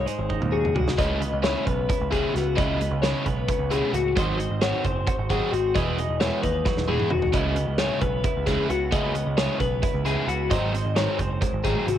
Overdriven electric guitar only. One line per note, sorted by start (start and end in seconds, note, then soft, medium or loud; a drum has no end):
0.98 1.21 C#3 medium
0.98 1.20 G#3 medium
0.98 1.20 C#4 medium
0.98 1.20 E4 medium
1.21 muted overdriven electric guitar stroke soft
1.43 1.66 C#3 medium
1.43 1.66 G#3 medium
1.43 1.66 C#4 medium
1.43 1.65 E4 medium
1.66 muted overdriven electric guitar stroke medium
1.89 muted overdriven electric guitar stroke soft
2.11 2.33 C#3 medium
2.11 2.34 G#3 medium
2.11 2.34 C#4 medium
2.11 2.34 E4 medium
2.34 muted overdriven electric guitar stroke soft
2.56 2.79 C#3 medium
2.56 2.80 G#3 medium
2.56 2.79 C#4 medium
2.56 2.79 E4 loud
2.80 muted overdriven electric guitar stroke medium
3.03 3.25 C#3 medium
3.03 3.25 G#3 medium
3.03 3.25 C#4 medium
3.03 3.24 E4 medium
3.26 muted overdriven electric guitar stroke soft
3.48 muted overdriven electric guitar stroke soft
3.71 3.93 C#3 medium
3.71 3.93 G#3 medium
3.71 3.94 C#4 medium
3.71 3.93 E4 medium
3.94 muted overdriven electric guitar stroke soft
4.16 4.38 D#3 medium
4.16 4.38 F#3 medium
4.16 4.37 C4 medium
4.16 4.37 F#4 medium
4.39 muted overdriven electric guitar stroke medium
4.62 4.84 D#3 medium
4.62 4.85 F#3 medium
4.62 4.84 C4 medium
4.62 4.84 F#4 medium
4.85 muted overdriven electric guitar stroke soft
5.07 muted overdriven electric guitar stroke soft
5.30 5.51 D#3 medium
5.30 5.52 F#3 medium
5.30 5.52 C4 medium
5.30 5.52 F#4 medium
5.52 muted overdriven electric guitar stroke soft
5.75 5.98 E3 medium
5.75 5.98 G#3 medium
5.75 5.98 B3 medium
5.75 5.97 E4 medium
5.98 muted overdriven electric guitar stroke soft
6.20 6.43 E3 medium
6.20 6.42 G#3 medium
6.20 6.42 B3 medium
6.20 6.42 E4 medium
6.43 muted overdriven electric guitar stroke medium
6.65 muted overdriven electric guitar stroke soft
6.88 7.09 E3 medium
6.88 7.09 G#3 medium
6.88 7.09 B3 medium
6.88 7.10 E4 medium
7.11 muted overdriven electric guitar stroke soft
7.33 7.56 C#3 medium
7.33 7.55 G#3 medium
7.33 7.55 C#4 medium
7.33 7.54 E4 medium
7.55 muted overdriven electric guitar stroke soft
7.78 8.01 C#3 medium
7.78 8.01 G#3 medium
7.78 8.01 C#4 medium
7.78 8.00 E4 medium
8.02 muted overdriven electric guitar stroke soft
8.24 muted overdriven electric guitar stroke soft
8.46 8.68 C#3 medium
8.46 8.68 G#3 medium
8.46 8.69 C#4 medium
8.46 8.69 E4 medium
8.70 muted overdriven electric guitar stroke soft
8.92 9.15 C#3 medium
8.92 9.14 G#3 medium
8.92 9.13 C#4 medium
8.92 9.13 E4 medium
9.14 muted overdriven electric guitar stroke soft
9.37 9.60 C#3 medium
9.37 9.60 G#3 medium
9.37 9.60 C#4 medium
9.37 9.59 E4 medium
9.60 muted overdriven electric guitar stroke soft
9.83 muted overdriven electric guitar stroke soft
10.05 10.26 C#3 medium
10.05 10.27 G#3 medium
10.05 10.27 C#4 medium
10.05 10.27 E4 medium
10.28 muted overdriven electric guitar stroke soft
10.50 10.73 D#3 medium
10.50 10.73 F#3 medium
10.50 10.73 C4 medium
10.50 10.73 D#4 medium
10.74 muted overdriven electric guitar stroke medium
10.96 11.19 D#3 medium
10.96 11.19 F#3 medium
10.96 11.19 C4 medium
10.96 11.18 D#4 medium
11.19 muted overdriven electric guitar stroke medium
11.42 muted overdriven electric guitar stroke soft
11.64 11.86 D#3 medium
11.64 11.87 F#3 medium
11.64 11.87 C4 medium
11.64 11.87 D#4 medium
11.87 muted overdriven electric guitar stroke soft